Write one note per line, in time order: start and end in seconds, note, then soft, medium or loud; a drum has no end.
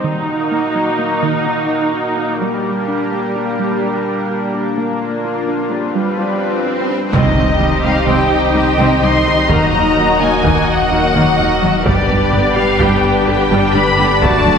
0.00 2.41 D#4 medium
0.00 2.36 D#4 medium
0.04 0.18 D#3 medium
0.04 5.72 A#3 medium
0.04 2.41 F#4 medium
0.04 5.72 A#4 medium
0.52 0.66 A#3 medium
0.75 0.90 F#3 medium
0.99 1.13 A#3 medium
1.23 1.37 D#3 medium
1.46 1.60 D#4 medium
1.94 2.08 D#4 medium
2.17 2.31 A#3 soft
2.41 4.73 G3 medium
2.41 2.55 G3 medium
2.41 7.14 D4 medium
2.41 4.78 G4 medium
2.88 3.02 D4 medium
3.12 3.26 A#3 medium
3.36 3.50 D4 medium
3.59 3.73 G3 medium
3.83 3.97 G4 soft
4.30 4.44 G4 soft
4.54 4.68 D4 medium
4.77 5.72 A#3 soft
4.77 4.92 A#3 medium
4.77 7.14 F4 medium
4.77 swell medium
5.25 5.39 F4 soft
5.49 5.63 D4 medium
5.71 7.12 G3 medium
5.71 6.93 G3 soft
5.71 5.86 D4 medium
5.71 7.13 B4 medium
5.95 6.10 G3 medium
6.19 6.33 F4 medium
6.66 6.80 F4 soft
6.90 7.04 D4 medium
7.12 7.21 C2 medium
7.12 9.51 C2 medium
7.12 7.22 C2 medium
7.12 7.27 C3 medium
7.12 11.81 D#3 soft
7.12 9.45 G3 medium
7.12 9.46 G3 medium
7.12 7.35 C4 soft
7.12 9.46 C4 soft
7.12 11.82 D#4 soft
7.12 11.82 D#4 medium
7.12 11.82 D#4 soft
7.12 9.45 G4 soft
7.12 9.46 G4 medium
7.12 9.46 C5 medium
7.12 7.80 D#5 medium
7.12 11.82 D#5 soft
7.12 taiko medium
7.12 impact medium
7.36 7.45 C2 soft
7.36 7.51 D#3 soft
7.36 7.44 C4 soft
7.60 7.69 C2 soft
7.60 7.74 D#3 medium
7.60 7.69 G3 soft
7.83 7.92 C2 soft
7.83 7.98 C4 medium
7.83 7.93 C4 soft
7.83 8.08 F5 medium
8.07 8.16 C2 medium
8.07 8.21 C3 medium
8.07 8.30 C4 soft
8.07 8.54 G5 medium
8.55 8.63 C2 soft
8.55 8.63 G3 soft
8.55 8.69 C4 soft
8.55 9.01 G5 medium
8.78 8.86 C2 medium
8.78 8.87 C2 medium
8.78 8.92 C3 medium
8.78 9.01 C4 medium
9.02 9.10 C2 soft
9.02 9.17 G3 soft
9.02 9.11 C4 soft
9.02 9.50 C6 medium
9.26 9.34 C2 soft
9.26 9.40 D#3 medium
9.26 9.34 G3 soft
9.49 11.87 D#1 medium
9.49 9.57 D#2 medium
9.49 9.58 D#2 medium
9.49 9.64 D#3 medium
9.49 11.82 F#3 medium
9.49 11.81 A#3 soft
9.49 11.85 A#3 medium
9.49 9.71 A#3 medium
9.49 11.86 F#4 medium
9.49 11.82 F#4 soft
9.49 11.86 A#4 medium
9.49 10.20 A#5 medium
9.49 taiko medium
9.73 9.81 D#2 soft
9.73 9.88 F#3 medium
9.73 9.81 A#3 soft
9.96 10.04 D#2 soft
9.96 10.05 D#2 soft
9.96 10.11 F#3 soft
9.96 10.05 F#3 soft
10.20 10.28 D#2 soft
10.20 10.29 D#2 soft
10.20 10.29 A#3 soft
10.20 10.34 D#4 medium
10.20 10.68 G#5 medium
10.43 10.51 D#2 medium
10.43 10.52 D#2 medium
10.43 10.58 D#3 medium
10.43 10.66 A#3 soft
10.43 taiko medium
10.68 11.86 F#5 medium
10.91 10.99 D#2 soft
10.91 11.00 D#2 soft
10.91 10.99 F#3 soft
10.91 11.05 D#4 medium
11.14 11.23 D#2 medium
11.14 11.24 D#2 medium
11.14 11.29 D#3 medium
11.14 11.36 A#3 medium
11.37 11.47 D#2 soft
11.37 11.45 A#3 soft
11.37 11.53 A#3 medium
11.62 11.70 D#2 soft
11.62 11.71 D#2 soft
11.62 11.70 F#3 soft
11.62 11.76 F#3 medium
11.84 11.93 G1 medium
11.84 14.23 G1 medium
11.84 11.94 G2 medium
11.84 14.58 D3 medium
11.84 12.08 G3 medium
11.84 12.00 G3 medium
11.84 14.18 G3 medium
11.84 14.21 B3 medium
11.84 14.22 B3 medium
11.84 14.58 D4 medium
11.84 14.18 G4 medium
11.84 14.22 G4 medium
11.84 14.18 G4 soft
11.84 14.18 B4 medium
11.84 14.58 D5 medium
11.84 12.56 D5 medium
11.84 taiko medium
12.09 12.17 G1 soft
12.09 12.18 G2 soft
12.09 12.18 G3 soft
12.09 12.24 B3 medium
12.33 12.41 G1 soft
12.33 12.41 G2 soft
12.33 12.41 D3 soft
12.33 12.47 B3 soft
12.56 12.64 G1 soft
12.56 12.65 G2 soft
12.56 12.64 G3 soft
12.56 12.71 G4 medium
12.56 12.80 F5 medium
12.79 12.87 G1 medium
12.79 12.88 G2 medium
12.79 13.02 G3 medium
12.79 12.94 G3 medium
12.79 13.26 G5 medium
12.79 taiko medium
13.27 13.35 G1 soft
13.27 13.36 G2 soft
13.27 13.35 D3 soft
13.27 13.42 G4 medium
13.27 13.74 G5 medium
13.50 13.58 G1 medium
13.50 13.60 G2 medium
13.50 13.73 G3 medium
13.50 13.65 G3 medium
13.74 13.82 G1 soft
13.74 13.83 G2 soft
13.74 13.83 G3 medium
13.74 13.89 D4 medium
13.74 14.22 B5 medium
13.98 14.06 G1 soft
13.98 14.07 G2 soft
13.98 14.06 D3 soft
13.98 14.12 B3 medium
14.21 14.58 D1 medium
14.21 14.30 D2 medium
14.21 14.36 D3 medium
14.21 14.31 D3 medium
14.21 14.58 A3 medium
14.21 14.44 A3 medium
14.21 14.58 A3 medium
14.21 14.58 D4 medium
14.21 14.58 F#4 medium
14.21 14.58 D5 medium
14.21 14.58 A5 medium
14.21 taiko medium
14.45 14.53 D2 soft
14.45 14.54 D3 soft
14.45 14.58 F#3 medium
14.45 14.54 A3 soft